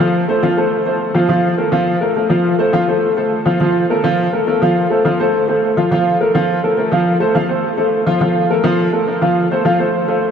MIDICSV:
0, 0, Header, 1, 2, 480
1, 0, Start_track
1, 0, Tempo, 288323
1, 220, Time_signature, 4, 2, 24, 8
1, 17166, End_track
2, 0, Start_track
2, 0, Title_t, "Upright piano"
2, 0, Program_c, 0, 0
2, 0, Note_on_c, 0, 53, 98
2, 0, Note_on_c, 0, 65, 92
2, 4, Note_on_c, 0, 77, 93
2, 380, Note_off_c, 0, 53, 0
2, 382, Note_off_c, 0, 65, 0
2, 388, Note_off_c, 0, 77, 0
2, 469, Note_on_c, 0, 57, 87
2, 475, Note_on_c, 0, 69, 77
2, 480, Note_on_c, 0, 72, 93
2, 662, Note_off_c, 0, 57, 0
2, 666, Note_off_c, 0, 69, 0
2, 669, Note_off_c, 0, 72, 0
2, 708, Note_on_c, 0, 53, 89
2, 712, Note_on_c, 0, 65, 92
2, 716, Note_on_c, 0, 77, 98
2, 902, Note_off_c, 0, 53, 0
2, 904, Note_off_c, 0, 65, 0
2, 907, Note_off_c, 0, 77, 0
2, 952, Note_on_c, 0, 57, 89
2, 956, Note_on_c, 0, 69, 85
2, 961, Note_on_c, 0, 72, 82
2, 1341, Note_off_c, 0, 57, 0
2, 1344, Note_off_c, 0, 69, 0
2, 1347, Note_off_c, 0, 72, 0
2, 1425, Note_on_c, 0, 57, 74
2, 1429, Note_on_c, 0, 69, 76
2, 1437, Note_on_c, 0, 72, 86
2, 1818, Note_off_c, 0, 57, 0
2, 1820, Note_off_c, 0, 69, 0
2, 1825, Note_off_c, 0, 72, 0
2, 1905, Note_on_c, 0, 53, 98
2, 1910, Note_on_c, 0, 77, 95
2, 1912, Note_on_c, 0, 65, 91
2, 2101, Note_off_c, 0, 53, 0
2, 2104, Note_off_c, 0, 77, 0
2, 2105, Note_off_c, 0, 65, 0
2, 2142, Note_on_c, 0, 53, 94
2, 2147, Note_on_c, 0, 65, 93
2, 2153, Note_on_c, 0, 77, 98
2, 2536, Note_off_c, 0, 53, 0
2, 2540, Note_off_c, 0, 65, 0
2, 2543, Note_off_c, 0, 77, 0
2, 2623, Note_on_c, 0, 57, 83
2, 2632, Note_on_c, 0, 69, 77
2, 2635, Note_on_c, 0, 70, 78
2, 2821, Note_off_c, 0, 57, 0
2, 2825, Note_off_c, 0, 69, 0
2, 2828, Note_off_c, 0, 70, 0
2, 2861, Note_on_c, 0, 53, 102
2, 2865, Note_on_c, 0, 65, 98
2, 2871, Note_on_c, 0, 77, 97
2, 3256, Note_off_c, 0, 53, 0
2, 3259, Note_off_c, 0, 65, 0
2, 3263, Note_off_c, 0, 77, 0
2, 3340, Note_on_c, 0, 57, 78
2, 3344, Note_on_c, 0, 69, 74
2, 3348, Note_on_c, 0, 70, 80
2, 3539, Note_off_c, 0, 57, 0
2, 3542, Note_off_c, 0, 69, 0
2, 3544, Note_off_c, 0, 70, 0
2, 3589, Note_on_c, 0, 57, 80
2, 3593, Note_on_c, 0, 69, 72
2, 3603, Note_on_c, 0, 70, 67
2, 3784, Note_off_c, 0, 57, 0
2, 3787, Note_off_c, 0, 69, 0
2, 3793, Note_off_c, 0, 70, 0
2, 3822, Note_on_c, 0, 53, 95
2, 3830, Note_on_c, 0, 65, 92
2, 3832, Note_on_c, 0, 77, 93
2, 4217, Note_off_c, 0, 53, 0
2, 4222, Note_off_c, 0, 65, 0
2, 4224, Note_off_c, 0, 77, 0
2, 4304, Note_on_c, 0, 57, 88
2, 4307, Note_on_c, 0, 69, 84
2, 4316, Note_on_c, 0, 72, 90
2, 4502, Note_off_c, 0, 57, 0
2, 4504, Note_off_c, 0, 69, 0
2, 4509, Note_off_c, 0, 72, 0
2, 4541, Note_on_c, 0, 53, 91
2, 4549, Note_on_c, 0, 65, 105
2, 4550, Note_on_c, 0, 77, 96
2, 4740, Note_off_c, 0, 53, 0
2, 4745, Note_off_c, 0, 65, 0
2, 4746, Note_off_c, 0, 77, 0
2, 4791, Note_on_c, 0, 57, 92
2, 4797, Note_on_c, 0, 69, 79
2, 4801, Note_on_c, 0, 72, 89
2, 5184, Note_off_c, 0, 57, 0
2, 5187, Note_off_c, 0, 69, 0
2, 5189, Note_off_c, 0, 72, 0
2, 5274, Note_on_c, 0, 57, 80
2, 5275, Note_on_c, 0, 69, 83
2, 5283, Note_on_c, 0, 72, 73
2, 5665, Note_off_c, 0, 57, 0
2, 5666, Note_off_c, 0, 69, 0
2, 5671, Note_off_c, 0, 72, 0
2, 5752, Note_on_c, 0, 53, 98
2, 5752, Note_on_c, 0, 65, 101
2, 5758, Note_on_c, 0, 77, 92
2, 5947, Note_off_c, 0, 53, 0
2, 5947, Note_off_c, 0, 65, 0
2, 5951, Note_off_c, 0, 77, 0
2, 5998, Note_on_c, 0, 53, 93
2, 6006, Note_on_c, 0, 65, 92
2, 6006, Note_on_c, 0, 77, 95
2, 6388, Note_off_c, 0, 53, 0
2, 6392, Note_off_c, 0, 65, 0
2, 6393, Note_off_c, 0, 77, 0
2, 6492, Note_on_c, 0, 57, 89
2, 6495, Note_on_c, 0, 69, 88
2, 6498, Note_on_c, 0, 70, 87
2, 6679, Note_off_c, 0, 57, 0
2, 6681, Note_off_c, 0, 69, 0
2, 6683, Note_off_c, 0, 70, 0
2, 6721, Note_on_c, 0, 53, 101
2, 6725, Note_on_c, 0, 65, 107
2, 6735, Note_on_c, 0, 77, 94
2, 7110, Note_off_c, 0, 53, 0
2, 7112, Note_off_c, 0, 65, 0
2, 7118, Note_off_c, 0, 77, 0
2, 7204, Note_on_c, 0, 57, 81
2, 7209, Note_on_c, 0, 69, 81
2, 7213, Note_on_c, 0, 70, 78
2, 7395, Note_off_c, 0, 57, 0
2, 7398, Note_off_c, 0, 69, 0
2, 7400, Note_off_c, 0, 70, 0
2, 7443, Note_on_c, 0, 57, 83
2, 7450, Note_on_c, 0, 69, 74
2, 7455, Note_on_c, 0, 70, 79
2, 7634, Note_off_c, 0, 57, 0
2, 7638, Note_off_c, 0, 69, 0
2, 7641, Note_off_c, 0, 70, 0
2, 7687, Note_on_c, 0, 53, 91
2, 7689, Note_on_c, 0, 65, 90
2, 7698, Note_on_c, 0, 77, 100
2, 8073, Note_off_c, 0, 53, 0
2, 8074, Note_off_c, 0, 65, 0
2, 8080, Note_off_c, 0, 77, 0
2, 8157, Note_on_c, 0, 57, 82
2, 8163, Note_on_c, 0, 69, 80
2, 8166, Note_on_c, 0, 72, 75
2, 8351, Note_off_c, 0, 57, 0
2, 8354, Note_off_c, 0, 69, 0
2, 8356, Note_off_c, 0, 72, 0
2, 8401, Note_on_c, 0, 53, 93
2, 8408, Note_on_c, 0, 65, 91
2, 8413, Note_on_c, 0, 77, 91
2, 8593, Note_off_c, 0, 53, 0
2, 8597, Note_off_c, 0, 65, 0
2, 8600, Note_off_c, 0, 77, 0
2, 8648, Note_on_c, 0, 57, 89
2, 8654, Note_on_c, 0, 69, 91
2, 8657, Note_on_c, 0, 72, 91
2, 9034, Note_off_c, 0, 57, 0
2, 9037, Note_off_c, 0, 69, 0
2, 9039, Note_off_c, 0, 72, 0
2, 9127, Note_on_c, 0, 57, 85
2, 9130, Note_on_c, 0, 69, 77
2, 9130, Note_on_c, 0, 72, 75
2, 9513, Note_off_c, 0, 57, 0
2, 9515, Note_off_c, 0, 69, 0
2, 9515, Note_off_c, 0, 72, 0
2, 9605, Note_on_c, 0, 53, 82
2, 9609, Note_on_c, 0, 65, 92
2, 9616, Note_on_c, 0, 77, 91
2, 9795, Note_off_c, 0, 53, 0
2, 9797, Note_off_c, 0, 65, 0
2, 9801, Note_off_c, 0, 77, 0
2, 9842, Note_on_c, 0, 53, 88
2, 9851, Note_on_c, 0, 65, 99
2, 9851, Note_on_c, 0, 77, 99
2, 10230, Note_off_c, 0, 53, 0
2, 10235, Note_off_c, 0, 65, 0
2, 10235, Note_off_c, 0, 77, 0
2, 10328, Note_on_c, 0, 57, 80
2, 10333, Note_on_c, 0, 69, 82
2, 10337, Note_on_c, 0, 70, 83
2, 10516, Note_off_c, 0, 57, 0
2, 10520, Note_off_c, 0, 69, 0
2, 10522, Note_off_c, 0, 70, 0
2, 10564, Note_on_c, 0, 53, 100
2, 10569, Note_on_c, 0, 65, 100
2, 10575, Note_on_c, 0, 77, 103
2, 10951, Note_off_c, 0, 53, 0
2, 10954, Note_off_c, 0, 65, 0
2, 10957, Note_off_c, 0, 77, 0
2, 11042, Note_on_c, 0, 57, 74
2, 11043, Note_on_c, 0, 69, 89
2, 11053, Note_on_c, 0, 70, 81
2, 11233, Note_off_c, 0, 57, 0
2, 11234, Note_off_c, 0, 69, 0
2, 11239, Note_off_c, 0, 70, 0
2, 11276, Note_on_c, 0, 57, 80
2, 11279, Note_on_c, 0, 69, 78
2, 11282, Note_on_c, 0, 70, 80
2, 11469, Note_off_c, 0, 57, 0
2, 11471, Note_off_c, 0, 69, 0
2, 11473, Note_off_c, 0, 70, 0
2, 11515, Note_on_c, 0, 53, 97
2, 11525, Note_on_c, 0, 65, 94
2, 11527, Note_on_c, 0, 77, 91
2, 11905, Note_off_c, 0, 53, 0
2, 11911, Note_off_c, 0, 65, 0
2, 11912, Note_off_c, 0, 77, 0
2, 11987, Note_on_c, 0, 57, 85
2, 11989, Note_on_c, 0, 69, 88
2, 11996, Note_on_c, 0, 72, 90
2, 12184, Note_off_c, 0, 57, 0
2, 12185, Note_off_c, 0, 69, 0
2, 12189, Note_off_c, 0, 72, 0
2, 12229, Note_on_c, 0, 65, 87
2, 12230, Note_on_c, 0, 53, 95
2, 12237, Note_on_c, 0, 77, 100
2, 12425, Note_off_c, 0, 53, 0
2, 12425, Note_off_c, 0, 65, 0
2, 12430, Note_off_c, 0, 77, 0
2, 12468, Note_on_c, 0, 57, 84
2, 12472, Note_on_c, 0, 69, 87
2, 12475, Note_on_c, 0, 72, 79
2, 12860, Note_off_c, 0, 57, 0
2, 12863, Note_off_c, 0, 69, 0
2, 12864, Note_off_c, 0, 72, 0
2, 12936, Note_on_c, 0, 57, 87
2, 12942, Note_on_c, 0, 69, 85
2, 12948, Note_on_c, 0, 72, 73
2, 13333, Note_off_c, 0, 57, 0
2, 13337, Note_off_c, 0, 69, 0
2, 13340, Note_off_c, 0, 72, 0
2, 13423, Note_on_c, 0, 53, 88
2, 13428, Note_on_c, 0, 65, 106
2, 13436, Note_on_c, 0, 77, 85
2, 13620, Note_off_c, 0, 53, 0
2, 13623, Note_off_c, 0, 65, 0
2, 13628, Note_off_c, 0, 77, 0
2, 13660, Note_on_c, 0, 53, 91
2, 13670, Note_on_c, 0, 65, 99
2, 13670, Note_on_c, 0, 77, 88
2, 14055, Note_off_c, 0, 53, 0
2, 14060, Note_off_c, 0, 77, 0
2, 14061, Note_off_c, 0, 65, 0
2, 14146, Note_on_c, 0, 57, 80
2, 14155, Note_on_c, 0, 69, 80
2, 14159, Note_on_c, 0, 70, 83
2, 14342, Note_off_c, 0, 57, 0
2, 14347, Note_off_c, 0, 69, 0
2, 14349, Note_off_c, 0, 70, 0
2, 14377, Note_on_c, 0, 65, 99
2, 14378, Note_on_c, 0, 53, 109
2, 14389, Note_on_c, 0, 77, 102
2, 14772, Note_off_c, 0, 65, 0
2, 14773, Note_off_c, 0, 53, 0
2, 14780, Note_off_c, 0, 77, 0
2, 14856, Note_on_c, 0, 57, 75
2, 14863, Note_on_c, 0, 69, 82
2, 14871, Note_on_c, 0, 70, 80
2, 15055, Note_off_c, 0, 57, 0
2, 15059, Note_off_c, 0, 69, 0
2, 15064, Note_off_c, 0, 70, 0
2, 15103, Note_on_c, 0, 57, 74
2, 15110, Note_on_c, 0, 69, 77
2, 15111, Note_on_c, 0, 70, 76
2, 15299, Note_off_c, 0, 57, 0
2, 15303, Note_off_c, 0, 69, 0
2, 15304, Note_off_c, 0, 70, 0
2, 15342, Note_on_c, 0, 53, 89
2, 15346, Note_on_c, 0, 65, 96
2, 15352, Note_on_c, 0, 77, 96
2, 15734, Note_off_c, 0, 53, 0
2, 15736, Note_off_c, 0, 65, 0
2, 15740, Note_off_c, 0, 77, 0
2, 15832, Note_on_c, 0, 57, 82
2, 15840, Note_on_c, 0, 69, 93
2, 15840, Note_on_c, 0, 72, 87
2, 16023, Note_off_c, 0, 57, 0
2, 16028, Note_off_c, 0, 69, 0
2, 16028, Note_off_c, 0, 72, 0
2, 16060, Note_on_c, 0, 53, 93
2, 16066, Note_on_c, 0, 65, 103
2, 16075, Note_on_c, 0, 77, 96
2, 16256, Note_off_c, 0, 53, 0
2, 16260, Note_off_c, 0, 65, 0
2, 16265, Note_off_c, 0, 77, 0
2, 16298, Note_on_c, 0, 57, 85
2, 16302, Note_on_c, 0, 69, 86
2, 16307, Note_on_c, 0, 72, 90
2, 16691, Note_off_c, 0, 57, 0
2, 16693, Note_off_c, 0, 69, 0
2, 16696, Note_off_c, 0, 72, 0
2, 16782, Note_on_c, 0, 57, 89
2, 16790, Note_on_c, 0, 69, 71
2, 16791, Note_on_c, 0, 72, 83
2, 17166, Note_off_c, 0, 57, 0
2, 17166, Note_off_c, 0, 69, 0
2, 17166, Note_off_c, 0, 72, 0
2, 17166, End_track
0, 0, End_of_file